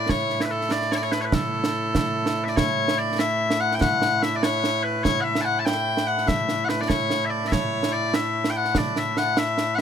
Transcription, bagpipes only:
0.00 9.81 A2 medium
0.00 9.81 A3 medium
0.00 9.81 E4 medium
0.09 0.41 C#5 loud
0.41 0.51 B4 medium
0.41 0.45 E5 medium
0.51 0.71 A4 medium
0.71 0.92 D5 loud
0.92 0.96 C#5 medium
0.92 1.03 D5 medium
1.03 1.12 C#5 medium
1.12 1.21 B4 medium
1.21 1.34 B4 medium
1.21 1.25 C#5 medium
1.34 2.44 A4 medium
2.44 2.48 E5 medium
2.48 2.56 D5 medium
2.56 2.98 C#5 medium
2.98 3.19 D5 loud
3.19 3.60 E5 loud
3.60 3.75 F#5 loud
3.75 3.81 G5 medium
3.81 4.23 F#5 loud
4.23 4.36 E5 medium
4.36 4.43 D5 medium
4.43 4.83 C#5 loud
4.83 5.04 B4 medium
5.04 5.20 C#5 loud
5.20 5.41 E5 medium
5.20 5.24 F#5 medium
5.41 5.59 F#5 loud
5.41 5.45 A5 loud
5.59 5.65 A5 medium
5.65 6.07 G5 loud
6.07 6.28 F#5 medium
6.28 6.65 E5 loud
6.65 6.69 F#5 medium
6.69 6.81 B4 medium
6.81 6.88 D5 medium
6.88 7.25 C#5 loud
7.25 7.30 E5 medium
7.30 7.47 D5 medium
7.47 7.52 E5 medium
7.52 7.92 C#5 medium
7.92 8.14 D5 loud
8.14 8.50 E5 loud
8.50 8.57 G5 medium
8.57 8.77 F#5 medium
8.77 8.98 D5 medium
8.98 9.18 E5 medium
9.18 9.38 F#5 loud
9.38 9.75 E5 loud
9.75 9.78 F#5 medium

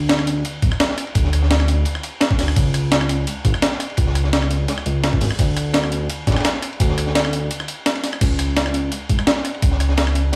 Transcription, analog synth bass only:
0.00 0.43 D2 loud
0.62 0.71 D1 medium
1.15 1.85 D2 loud
2.39 2.55 D1 medium
2.57 3.26 C#2 loud
3.45 3.53 G#1 medium
3.98 4.67 C#2 loud
4.86 5.20 C#2 loud
5.21 5.30 G#1 loud
5.39 6.08 D2 loud
6.27 6.36 D1 medium
6.80 7.49 D2 loud
8.21 8.91 C#2 loud
9.09 9.18 G#1 medium
9.62 10.32 C#2 loud

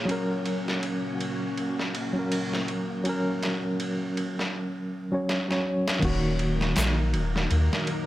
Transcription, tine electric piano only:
0.00 0.11 A#3 medium
0.00 0.12 G#4 medium
0.00 0.11 C#5 medium
0.05 2.09 F#3 medium
0.05 2.10 C#4 medium
0.11 2.12 A#4 loud
2.13 3.01 F#3 medium
2.13 3.02 C#4 medium
2.19 3.04 A#4 medium
3.03 5.06 F#3 medium
3.03 5.07 C#4 medium
3.09 5.09 A#4 loud
5.12 5.28 F#3 medium
5.12 5.29 C#4 medium
5.12 5.30 C#5 medium
5.48 5.98 F#3 medium
5.48 5.99 C#4 medium
5.48 5.99 C#5 loud
5.99 8.02 D#3 medium
5.99 8.03 A#3 medium
6.05 8.05 F#4 loud

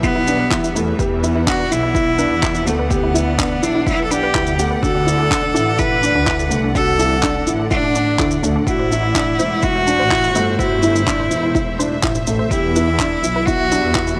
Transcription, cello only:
0.03 0.71 B3 loud
1.49 1.74 F#4 loud
1.72 2.68 E4 loud
2.67 2.92 A3 medium
2.91 3.64 B3 medium
3.63 3.88 D4 loud
3.86 4.04 E4 loud
4.04 4.12 A4 medium
4.11 4.59 G4 loud
4.83 5.80 A4 loud
5.79 6.51 B4 loud
6.76 7.43 A4 loud
7.71 8.39 D4 loud
8.68 9.65 E4 loud
9.63 10.60 F#4 loud
10.58 12.03 E4 loud
12.50 13.47 E4 loud
13.46 14.19 F#4 loud

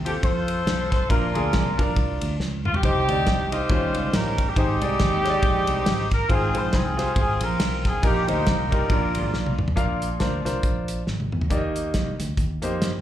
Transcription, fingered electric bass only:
0.00 0.17 D#2 medium
0.23 0.60 F2 loud
0.66 1.03 B1 medium
1.10 1.31 A#1 loud
1.35 1.56 D2 medium
1.54 1.75 C2 medium
1.79 1.94 A#1 loud
1.96 2.18 C2 medium
2.22 2.37 D2 medium
2.40 2.77 C#2 loud
2.83 3.04 C2 loud
3.08 3.23 D2 medium
3.27 3.64 C2 loud
3.70 3.91 D#2 loud
3.94 4.10 C#2 medium
4.13 4.50 A1 medium
4.56 4.78 G#1 loud
4.82 4.97 C2 medium
5.00 5.37 D#2 medium
5.42 5.64 A#1 medium
5.68 5.83 C2 medium
5.86 6.23 G#1 medium
6.30 6.51 G#1 loud
6.54 6.70 A#1 medium
6.74 7.10 C2 medium
7.16 7.37 G#1 loud
7.41 7.57 A#1 loud
7.60 7.97 B1 medium
8.03 8.24 A#1 loud
8.28 8.43 D2 medium
8.47 8.84 C2 medium
8.90 9.17 A#1 medium
9.15 9.31 G#1 medium
9.34 9.70 B1 loud
9.77 10.14 A#1 loud
10.21 10.42 D2 medium
10.46 10.61 C2 medium
10.63 11.00 A#1 medium
11.07 11.29 G#1 medium
11.33 11.48 E2 medium
11.50 11.96 D#2 medium
11.94 12.16 C2 medium
12.19 12.35 D2 medium
12.37 12.63 D#2 medium
12.63 12.81 F2 medium
12.81 13.01 G2 medium

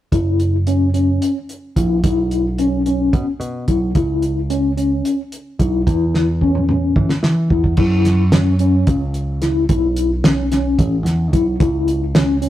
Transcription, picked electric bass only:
0.12 1.18 F#1 medium
1.76 2.01 A#1 medium
2.04 3.09 B1 medium
3.13 3.25 B2 medium
3.40 3.65 B2 medium
3.68 3.93 B1 medium
3.95 5.00 C#2 medium
5.59 5.84 B1 medium
5.87 6.92 E2 medium
6.96 7.08 E3 medium
7.23 7.48 E3 medium
7.50 7.75 E2 medium
7.78 8.83 F#2 medium
8.87 9.65 C#2 medium
9.70 10.74 B1 medium
10.79 11.03 A1 medium
11.04 11.33 E2 medium
11.33 11.58 B1 medium
11.60 12.49 C#2 medium

